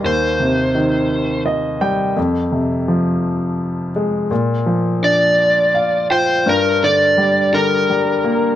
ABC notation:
X:1
M:6/8
L:1/8
Q:3/8=56
K:Gphr
V:1 name="Electric slide guitar"
c4 z2 | z6 | z2 d3 c | B d2 B3 |]
V:2 name="Grand piano"
z4 e g | z6 | z4 f g | z6 |]
V:3 name="Grand piano" clef=bass
E,, C, E,3 G, | F,, C, F,3 A, | B,, F, D3 F | G,, D, G, D, G, B, |]